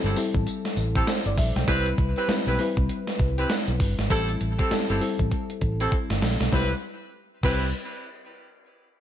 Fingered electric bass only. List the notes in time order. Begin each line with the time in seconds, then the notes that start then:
0.04 G1
0.35 A1
0.77 A1
1.26 G1
1.38 A#1
1.56 B1
1.68 C2
1.98 C2
2.28 muted fingered electric bass stroke
2.47 B1
2.77 C2
3.20 C2
3.68 B1
3.80 G1
3.98 G#1
4.10 A1
4.41 A1
4.71 muted fingered electric bass stroke
4.90 G1
5.20 A1
5.62 A1
6.10 G1
6.22 A#1
6.40 B1
6.53 C2
7.43 C2